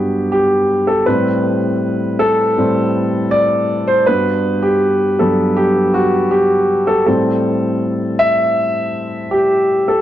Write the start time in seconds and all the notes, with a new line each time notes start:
Already playing: G2 F#3 B3 F#4 G4 B4
0.32 G4
0.88 A4
1.07 A2 G3 C4 B4
2.19 A4
2.57 A2 G3 C4
3.31 D5
3.88 C5
4.07 G2 B3 F#4 B4
4.63 G4
5.20 G2 F#3 B3 A4
5.57 G4
5.94 F#4
6.31 G4
6.87 A4
7.06 A2 G3 C4 A4
8.19 E5
9.31 G4
9.88 A4